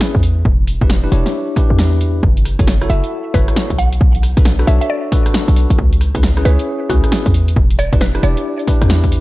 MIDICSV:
0, 0, Header, 1, 5, 480
1, 0, Start_track
1, 0, Tempo, 444444
1, 488, Time_signature, 4, 2, 24, 8
1, 9941, End_track
2, 0, Start_track
2, 0, Title_t, "Synth pluck"
2, 0, Program_c, 0, 84
2, 3129, Note_on_c, 0, 76, 86
2, 3330, Note_off_c, 0, 76, 0
2, 3608, Note_on_c, 0, 71, 88
2, 3809, Note_off_c, 0, 71, 0
2, 4087, Note_on_c, 0, 78, 85
2, 4289, Note_off_c, 0, 78, 0
2, 5047, Note_on_c, 0, 76, 84
2, 5144, Note_off_c, 0, 76, 0
2, 5198, Note_on_c, 0, 76, 72
2, 5256, Note_off_c, 0, 76, 0
2, 5288, Note_on_c, 0, 74, 94
2, 5679, Note_off_c, 0, 74, 0
2, 6968, Note_on_c, 0, 71, 90
2, 7169, Note_off_c, 0, 71, 0
2, 7447, Note_on_c, 0, 66, 90
2, 7649, Note_off_c, 0, 66, 0
2, 8410, Note_on_c, 0, 74, 92
2, 8610, Note_off_c, 0, 74, 0
2, 8651, Note_on_c, 0, 71, 95
2, 8872, Note_off_c, 0, 71, 0
2, 8890, Note_on_c, 0, 74, 90
2, 9369, Note_off_c, 0, 74, 0
2, 9941, End_track
3, 0, Start_track
3, 0, Title_t, "Tine electric piano"
3, 0, Program_c, 1, 4
3, 0, Note_on_c, 1, 61, 89
3, 0, Note_on_c, 1, 64, 81
3, 0, Note_on_c, 1, 68, 79
3, 0, Note_on_c, 1, 71, 99
3, 237, Note_off_c, 1, 61, 0
3, 237, Note_off_c, 1, 64, 0
3, 237, Note_off_c, 1, 68, 0
3, 237, Note_off_c, 1, 71, 0
3, 880, Note_on_c, 1, 62, 80
3, 880, Note_on_c, 1, 64, 67
3, 880, Note_on_c, 1, 67, 71
3, 880, Note_on_c, 1, 71, 87
3, 1042, Note_off_c, 1, 67, 0
3, 1042, Note_off_c, 1, 71, 0
3, 1043, Note_off_c, 1, 62, 0
3, 1043, Note_off_c, 1, 64, 0
3, 1119, Note_on_c, 1, 62, 90
3, 1119, Note_on_c, 1, 71, 99
3, 1120, Note_on_c, 1, 64, 83
3, 1120, Note_on_c, 1, 67, 82
3, 1195, Note_off_c, 1, 62, 0
3, 1195, Note_off_c, 1, 64, 0
3, 1195, Note_off_c, 1, 67, 0
3, 1195, Note_off_c, 1, 71, 0
3, 1209, Note_on_c, 1, 62, 82
3, 1209, Note_on_c, 1, 64, 79
3, 1209, Note_on_c, 1, 67, 73
3, 1209, Note_on_c, 1, 73, 94
3, 1667, Note_off_c, 1, 67, 0
3, 1668, Note_off_c, 1, 62, 0
3, 1668, Note_off_c, 1, 64, 0
3, 1668, Note_off_c, 1, 73, 0
3, 1688, Note_on_c, 1, 64, 84
3, 1688, Note_on_c, 1, 71, 99
3, 1689, Note_on_c, 1, 62, 91
3, 1689, Note_on_c, 1, 67, 84
3, 2398, Note_off_c, 1, 62, 0
3, 2398, Note_off_c, 1, 64, 0
3, 2398, Note_off_c, 1, 67, 0
3, 2398, Note_off_c, 1, 71, 0
3, 2800, Note_on_c, 1, 66, 71
3, 2801, Note_on_c, 1, 64, 78
3, 2801, Note_on_c, 1, 69, 70
3, 2801, Note_on_c, 1, 73, 90
3, 2963, Note_off_c, 1, 64, 0
3, 2963, Note_off_c, 1, 66, 0
3, 2963, Note_off_c, 1, 69, 0
3, 2963, Note_off_c, 1, 73, 0
3, 3041, Note_on_c, 1, 64, 92
3, 3041, Note_on_c, 1, 66, 78
3, 3041, Note_on_c, 1, 69, 84
3, 3041, Note_on_c, 1, 73, 104
3, 3116, Note_off_c, 1, 64, 0
3, 3116, Note_off_c, 1, 66, 0
3, 3116, Note_off_c, 1, 69, 0
3, 3116, Note_off_c, 1, 73, 0
3, 3128, Note_on_c, 1, 76, 93
3, 3129, Note_on_c, 1, 64, 83
3, 3129, Note_on_c, 1, 66, 75
3, 3129, Note_on_c, 1, 69, 76
3, 3587, Note_off_c, 1, 64, 0
3, 3587, Note_off_c, 1, 66, 0
3, 3587, Note_off_c, 1, 69, 0
3, 3587, Note_off_c, 1, 76, 0
3, 3608, Note_on_c, 1, 69, 79
3, 3608, Note_on_c, 1, 73, 105
3, 3609, Note_on_c, 1, 64, 95
3, 3609, Note_on_c, 1, 66, 83
3, 4078, Note_off_c, 1, 64, 0
3, 4078, Note_off_c, 1, 66, 0
3, 4078, Note_off_c, 1, 69, 0
3, 4078, Note_off_c, 1, 73, 0
3, 4720, Note_on_c, 1, 62, 76
3, 4720, Note_on_c, 1, 66, 68
3, 4720, Note_on_c, 1, 69, 73
3, 4720, Note_on_c, 1, 71, 88
3, 4882, Note_off_c, 1, 62, 0
3, 4882, Note_off_c, 1, 66, 0
3, 4882, Note_off_c, 1, 69, 0
3, 4882, Note_off_c, 1, 71, 0
3, 4959, Note_on_c, 1, 62, 96
3, 4959, Note_on_c, 1, 66, 85
3, 4959, Note_on_c, 1, 69, 86
3, 4959, Note_on_c, 1, 71, 103
3, 5035, Note_off_c, 1, 62, 0
3, 5035, Note_off_c, 1, 66, 0
3, 5035, Note_off_c, 1, 69, 0
3, 5035, Note_off_c, 1, 71, 0
3, 5049, Note_on_c, 1, 62, 86
3, 5049, Note_on_c, 1, 66, 82
3, 5049, Note_on_c, 1, 69, 81
3, 5049, Note_on_c, 1, 73, 93
3, 5507, Note_off_c, 1, 62, 0
3, 5507, Note_off_c, 1, 66, 0
3, 5507, Note_off_c, 1, 69, 0
3, 5507, Note_off_c, 1, 73, 0
3, 5529, Note_on_c, 1, 62, 91
3, 5529, Note_on_c, 1, 66, 85
3, 5529, Note_on_c, 1, 69, 89
3, 5529, Note_on_c, 1, 71, 101
3, 6238, Note_off_c, 1, 62, 0
3, 6238, Note_off_c, 1, 66, 0
3, 6238, Note_off_c, 1, 69, 0
3, 6238, Note_off_c, 1, 71, 0
3, 6640, Note_on_c, 1, 61, 85
3, 6640, Note_on_c, 1, 64, 73
3, 6640, Note_on_c, 1, 68, 70
3, 6640, Note_on_c, 1, 71, 87
3, 6802, Note_off_c, 1, 61, 0
3, 6802, Note_off_c, 1, 64, 0
3, 6802, Note_off_c, 1, 68, 0
3, 6803, Note_off_c, 1, 71, 0
3, 6879, Note_on_c, 1, 61, 92
3, 6879, Note_on_c, 1, 64, 82
3, 6879, Note_on_c, 1, 68, 91
3, 6879, Note_on_c, 1, 71, 102
3, 6955, Note_off_c, 1, 61, 0
3, 6955, Note_off_c, 1, 64, 0
3, 6955, Note_off_c, 1, 68, 0
3, 6955, Note_off_c, 1, 71, 0
3, 6969, Note_on_c, 1, 61, 87
3, 6969, Note_on_c, 1, 64, 81
3, 6969, Note_on_c, 1, 68, 76
3, 6969, Note_on_c, 1, 73, 95
3, 7427, Note_off_c, 1, 61, 0
3, 7427, Note_off_c, 1, 64, 0
3, 7427, Note_off_c, 1, 68, 0
3, 7427, Note_off_c, 1, 73, 0
3, 7449, Note_on_c, 1, 61, 95
3, 7449, Note_on_c, 1, 64, 84
3, 7449, Note_on_c, 1, 68, 91
3, 7449, Note_on_c, 1, 71, 106
3, 7918, Note_off_c, 1, 61, 0
3, 7918, Note_off_c, 1, 64, 0
3, 7918, Note_off_c, 1, 68, 0
3, 7918, Note_off_c, 1, 71, 0
3, 8560, Note_on_c, 1, 62, 85
3, 8560, Note_on_c, 1, 64, 74
3, 8560, Note_on_c, 1, 67, 75
3, 8560, Note_on_c, 1, 71, 94
3, 8722, Note_off_c, 1, 62, 0
3, 8722, Note_off_c, 1, 71, 0
3, 8723, Note_off_c, 1, 64, 0
3, 8723, Note_off_c, 1, 67, 0
3, 8799, Note_on_c, 1, 62, 91
3, 8799, Note_on_c, 1, 67, 83
3, 8800, Note_on_c, 1, 64, 86
3, 8800, Note_on_c, 1, 71, 107
3, 8875, Note_off_c, 1, 62, 0
3, 8875, Note_off_c, 1, 64, 0
3, 8875, Note_off_c, 1, 67, 0
3, 8875, Note_off_c, 1, 71, 0
3, 8888, Note_on_c, 1, 62, 88
3, 8888, Note_on_c, 1, 64, 82
3, 8888, Note_on_c, 1, 67, 80
3, 8888, Note_on_c, 1, 74, 96
3, 9347, Note_off_c, 1, 62, 0
3, 9347, Note_off_c, 1, 64, 0
3, 9347, Note_off_c, 1, 67, 0
3, 9347, Note_off_c, 1, 74, 0
3, 9368, Note_on_c, 1, 62, 94
3, 9368, Note_on_c, 1, 64, 89
3, 9368, Note_on_c, 1, 67, 83
3, 9368, Note_on_c, 1, 71, 110
3, 9941, Note_off_c, 1, 62, 0
3, 9941, Note_off_c, 1, 64, 0
3, 9941, Note_off_c, 1, 67, 0
3, 9941, Note_off_c, 1, 71, 0
3, 9941, End_track
4, 0, Start_track
4, 0, Title_t, "808-style bass"
4, 0, Program_c, 2, 38
4, 158, Note_on_c, 2, 40, 88
4, 467, Note_off_c, 2, 40, 0
4, 487, Note_on_c, 2, 28, 100
4, 843, Note_off_c, 2, 28, 0
4, 879, Note_on_c, 2, 28, 77
4, 1187, Note_off_c, 2, 28, 0
4, 1207, Note_on_c, 2, 28, 100
4, 1336, Note_off_c, 2, 28, 0
4, 1838, Note_on_c, 2, 40, 81
4, 2387, Note_off_c, 2, 40, 0
4, 2409, Note_on_c, 2, 30, 101
4, 2764, Note_off_c, 2, 30, 0
4, 2799, Note_on_c, 2, 30, 78
4, 3107, Note_off_c, 2, 30, 0
4, 3127, Note_on_c, 2, 30, 106
4, 3256, Note_off_c, 2, 30, 0
4, 3609, Note_on_c, 2, 30, 89
4, 3737, Note_off_c, 2, 30, 0
4, 3999, Note_on_c, 2, 35, 88
4, 4307, Note_off_c, 2, 35, 0
4, 4328, Note_on_c, 2, 35, 104
4, 4684, Note_off_c, 2, 35, 0
4, 4720, Note_on_c, 2, 35, 83
4, 5028, Note_off_c, 2, 35, 0
4, 5047, Note_on_c, 2, 35, 103
4, 5176, Note_off_c, 2, 35, 0
4, 5919, Note_on_c, 2, 35, 73
4, 6114, Note_off_c, 2, 35, 0
4, 6159, Note_on_c, 2, 33, 81
4, 6235, Note_off_c, 2, 33, 0
4, 6249, Note_on_c, 2, 37, 102
4, 6604, Note_off_c, 2, 37, 0
4, 6639, Note_on_c, 2, 37, 77
4, 6947, Note_off_c, 2, 37, 0
4, 6968, Note_on_c, 2, 37, 101
4, 7097, Note_off_c, 2, 37, 0
4, 7448, Note_on_c, 2, 37, 89
4, 7577, Note_off_c, 2, 37, 0
4, 7840, Note_on_c, 2, 40, 91
4, 8148, Note_off_c, 2, 40, 0
4, 8169, Note_on_c, 2, 28, 99
4, 8524, Note_off_c, 2, 28, 0
4, 8560, Note_on_c, 2, 28, 76
4, 8868, Note_off_c, 2, 28, 0
4, 8889, Note_on_c, 2, 28, 109
4, 9017, Note_off_c, 2, 28, 0
4, 9520, Note_on_c, 2, 40, 81
4, 9941, Note_off_c, 2, 40, 0
4, 9941, End_track
5, 0, Start_track
5, 0, Title_t, "Drums"
5, 7, Note_on_c, 9, 38, 115
5, 115, Note_off_c, 9, 38, 0
5, 159, Note_on_c, 9, 36, 61
5, 247, Note_on_c, 9, 46, 94
5, 267, Note_off_c, 9, 36, 0
5, 355, Note_off_c, 9, 46, 0
5, 488, Note_on_c, 9, 36, 105
5, 596, Note_off_c, 9, 36, 0
5, 728, Note_on_c, 9, 46, 96
5, 836, Note_off_c, 9, 46, 0
5, 879, Note_on_c, 9, 36, 99
5, 968, Note_on_c, 9, 38, 116
5, 987, Note_off_c, 9, 36, 0
5, 1076, Note_off_c, 9, 38, 0
5, 1208, Note_on_c, 9, 46, 89
5, 1316, Note_off_c, 9, 46, 0
5, 1360, Note_on_c, 9, 38, 60
5, 1468, Note_off_c, 9, 38, 0
5, 1688, Note_on_c, 9, 36, 101
5, 1689, Note_on_c, 9, 46, 92
5, 1796, Note_off_c, 9, 36, 0
5, 1797, Note_off_c, 9, 46, 0
5, 1929, Note_on_c, 9, 38, 117
5, 2037, Note_off_c, 9, 38, 0
5, 2169, Note_on_c, 9, 46, 92
5, 2277, Note_off_c, 9, 46, 0
5, 2409, Note_on_c, 9, 36, 109
5, 2517, Note_off_c, 9, 36, 0
5, 2560, Note_on_c, 9, 42, 50
5, 2650, Note_on_c, 9, 37, 28
5, 2650, Note_on_c, 9, 46, 100
5, 2668, Note_off_c, 9, 42, 0
5, 2758, Note_off_c, 9, 37, 0
5, 2758, Note_off_c, 9, 46, 0
5, 2799, Note_on_c, 9, 36, 95
5, 2801, Note_on_c, 9, 42, 64
5, 2889, Note_on_c, 9, 38, 113
5, 2907, Note_off_c, 9, 36, 0
5, 2909, Note_off_c, 9, 42, 0
5, 2997, Note_off_c, 9, 38, 0
5, 3041, Note_on_c, 9, 37, 63
5, 3041, Note_on_c, 9, 42, 37
5, 3130, Note_on_c, 9, 46, 92
5, 3149, Note_off_c, 9, 37, 0
5, 3149, Note_off_c, 9, 42, 0
5, 3238, Note_off_c, 9, 46, 0
5, 3280, Note_on_c, 9, 42, 61
5, 3388, Note_off_c, 9, 42, 0
5, 3609, Note_on_c, 9, 36, 99
5, 3609, Note_on_c, 9, 46, 98
5, 3717, Note_off_c, 9, 36, 0
5, 3717, Note_off_c, 9, 46, 0
5, 3760, Note_on_c, 9, 37, 60
5, 3760, Note_on_c, 9, 42, 61
5, 3849, Note_on_c, 9, 38, 110
5, 3868, Note_off_c, 9, 37, 0
5, 3868, Note_off_c, 9, 42, 0
5, 3957, Note_off_c, 9, 38, 0
5, 4000, Note_on_c, 9, 36, 61
5, 4000, Note_on_c, 9, 42, 52
5, 4089, Note_on_c, 9, 46, 93
5, 4108, Note_off_c, 9, 36, 0
5, 4108, Note_off_c, 9, 42, 0
5, 4197, Note_off_c, 9, 46, 0
5, 4240, Note_on_c, 9, 42, 68
5, 4329, Note_on_c, 9, 36, 104
5, 4348, Note_off_c, 9, 42, 0
5, 4437, Note_off_c, 9, 36, 0
5, 4480, Note_on_c, 9, 42, 48
5, 4570, Note_on_c, 9, 37, 28
5, 4570, Note_on_c, 9, 46, 101
5, 4588, Note_off_c, 9, 42, 0
5, 4678, Note_off_c, 9, 37, 0
5, 4678, Note_off_c, 9, 46, 0
5, 4720, Note_on_c, 9, 36, 100
5, 4721, Note_on_c, 9, 42, 66
5, 4809, Note_on_c, 9, 38, 112
5, 4828, Note_off_c, 9, 36, 0
5, 4829, Note_off_c, 9, 42, 0
5, 4917, Note_off_c, 9, 38, 0
5, 4961, Note_on_c, 9, 37, 60
5, 4961, Note_on_c, 9, 42, 39
5, 5050, Note_on_c, 9, 46, 104
5, 5069, Note_off_c, 9, 37, 0
5, 5069, Note_off_c, 9, 42, 0
5, 5158, Note_off_c, 9, 46, 0
5, 5200, Note_on_c, 9, 42, 68
5, 5308, Note_off_c, 9, 42, 0
5, 5529, Note_on_c, 9, 36, 101
5, 5529, Note_on_c, 9, 46, 101
5, 5637, Note_off_c, 9, 36, 0
5, 5637, Note_off_c, 9, 46, 0
5, 5680, Note_on_c, 9, 37, 59
5, 5680, Note_on_c, 9, 42, 64
5, 5769, Note_on_c, 9, 38, 112
5, 5788, Note_off_c, 9, 37, 0
5, 5788, Note_off_c, 9, 42, 0
5, 5877, Note_off_c, 9, 38, 0
5, 5921, Note_on_c, 9, 42, 54
5, 6009, Note_on_c, 9, 46, 96
5, 6029, Note_off_c, 9, 42, 0
5, 6117, Note_off_c, 9, 46, 0
5, 6160, Note_on_c, 9, 42, 67
5, 6248, Note_on_c, 9, 36, 102
5, 6268, Note_off_c, 9, 42, 0
5, 6356, Note_off_c, 9, 36, 0
5, 6401, Note_on_c, 9, 42, 50
5, 6490, Note_on_c, 9, 37, 30
5, 6490, Note_on_c, 9, 46, 104
5, 6509, Note_off_c, 9, 42, 0
5, 6598, Note_off_c, 9, 37, 0
5, 6598, Note_off_c, 9, 46, 0
5, 6639, Note_on_c, 9, 36, 92
5, 6641, Note_on_c, 9, 42, 65
5, 6730, Note_on_c, 9, 38, 110
5, 6747, Note_off_c, 9, 36, 0
5, 6749, Note_off_c, 9, 42, 0
5, 6838, Note_off_c, 9, 38, 0
5, 6881, Note_on_c, 9, 37, 63
5, 6881, Note_on_c, 9, 42, 39
5, 6969, Note_on_c, 9, 46, 104
5, 6989, Note_off_c, 9, 37, 0
5, 6989, Note_off_c, 9, 42, 0
5, 7077, Note_off_c, 9, 46, 0
5, 7121, Note_on_c, 9, 42, 65
5, 7229, Note_off_c, 9, 42, 0
5, 7449, Note_on_c, 9, 36, 94
5, 7450, Note_on_c, 9, 46, 107
5, 7557, Note_off_c, 9, 36, 0
5, 7558, Note_off_c, 9, 46, 0
5, 7601, Note_on_c, 9, 37, 61
5, 7601, Note_on_c, 9, 42, 67
5, 7689, Note_on_c, 9, 38, 110
5, 7709, Note_off_c, 9, 37, 0
5, 7709, Note_off_c, 9, 42, 0
5, 7797, Note_off_c, 9, 38, 0
5, 7840, Note_on_c, 9, 36, 53
5, 7840, Note_on_c, 9, 42, 58
5, 7930, Note_on_c, 9, 46, 100
5, 7948, Note_off_c, 9, 36, 0
5, 7948, Note_off_c, 9, 42, 0
5, 8038, Note_off_c, 9, 46, 0
5, 8081, Note_on_c, 9, 42, 68
5, 8169, Note_on_c, 9, 36, 102
5, 8189, Note_off_c, 9, 42, 0
5, 8277, Note_off_c, 9, 36, 0
5, 8322, Note_on_c, 9, 42, 50
5, 8410, Note_on_c, 9, 37, 32
5, 8410, Note_on_c, 9, 46, 104
5, 8430, Note_off_c, 9, 42, 0
5, 8518, Note_off_c, 9, 37, 0
5, 8518, Note_off_c, 9, 46, 0
5, 8560, Note_on_c, 9, 36, 95
5, 8561, Note_on_c, 9, 42, 64
5, 8650, Note_on_c, 9, 38, 114
5, 8668, Note_off_c, 9, 36, 0
5, 8669, Note_off_c, 9, 42, 0
5, 8758, Note_off_c, 9, 38, 0
5, 8801, Note_on_c, 9, 37, 68
5, 8801, Note_on_c, 9, 42, 40
5, 8889, Note_on_c, 9, 46, 106
5, 8909, Note_off_c, 9, 37, 0
5, 8909, Note_off_c, 9, 42, 0
5, 8997, Note_off_c, 9, 46, 0
5, 9041, Note_on_c, 9, 42, 67
5, 9149, Note_off_c, 9, 42, 0
5, 9281, Note_on_c, 9, 42, 36
5, 9369, Note_on_c, 9, 36, 96
5, 9370, Note_on_c, 9, 46, 103
5, 9389, Note_off_c, 9, 42, 0
5, 9477, Note_off_c, 9, 36, 0
5, 9478, Note_off_c, 9, 46, 0
5, 9522, Note_on_c, 9, 37, 67
5, 9522, Note_on_c, 9, 42, 63
5, 9609, Note_on_c, 9, 38, 112
5, 9630, Note_off_c, 9, 37, 0
5, 9630, Note_off_c, 9, 42, 0
5, 9717, Note_off_c, 9, 38, 0
5, 9760, Note_on_c, 9, 36, 56
5, 9760, Note_on_c, 9, 42, 53
5, 9849, Note_on_c, 9, 46, 107
5, 9868, Note_off_c, 9, 36, 0
5, 9868, Note_off_c, 9, 42, 0
5, 9941, Note_off_c, 9, 46, 0
5, 9941, End_track
0, 0, End_of_file